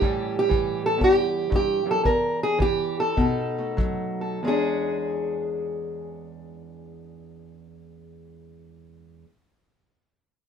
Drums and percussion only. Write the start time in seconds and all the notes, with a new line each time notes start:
0.02 kick
0.51 kick
1.01 kick
1.52 kick
2.05 kick
2.60 kick
3.17 kick
3.78 kick